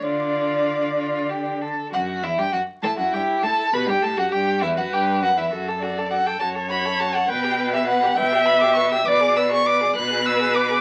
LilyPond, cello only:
\new Staff \with { instrumentName = "Cello" } { \clef bass \time 6/8 \key d \minor \tempo 4. = 67 d2~ d8 r8 | \key a \mixolydian fis,8 e,16 g,16 fis,8 a,16 fis,16 g,8 a,8 | b,16 g,16 a,16 fis,16 g,8 e,16 fis,16 g,8 fis,16 e,16 | fis,4. fis,4. |
b,4. b,4. | b,4. b,4. | }